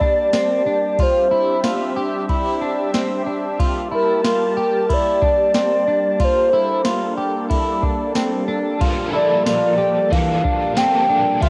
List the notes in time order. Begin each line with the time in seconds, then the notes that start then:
Already playing: G3 A#3 G4 D5 A5
0.01 D4, kick
0.33 C4, snare, ride, tambourine
0.66 D4
0.99 C4 D4 F4 C5 E5, kick, ride
1.31 E4
1.64 F4, snare, ride, tambourine
1.97 G4
2.29 E4, kick, ride
2.61 D4
2.94 C4, snare, ride, tambourine
3.26 D4
3.59 A#3 F4 A5, kick, ride
3.91 E4 A#4
4.24 F4 A#4, snare, ride, tambourine
4.57 G4
4.89 E4 D5, kick, ride
5.22 D4, kick
5.54 C4, snare, ride, tambourine
5.59 D5
5.88 D4
6.20 D4 F4 A4, kick, ride
6.24 C5
6.53 E4
6.85 F4, snare, ride, tambourine
7.18 G4
7.50 E4, kick, ride
7.83 D4, kick
8.15 C4, snare, ride, tambourine
8.48 D4
8.80 G2 D3 F3 A#3 D4 F4 G4 A4, kick, ride
9.13 A#3 D4 E4 A4 D5
9.18 F3
9.46 F4 D5, snare, ride, tambourine
9.78 G4
10.10 E3 F3 A#3 D4 F5, kick, ride
10.15 A4
10.44 D4, kick
10.75 F3 A#3 C4 D4 G5, snare, ride, tambourine
10.80 A4
11.09 D4
11.40 D3 F3 C4 D4 F4 E5, kick, ride
11.44 C4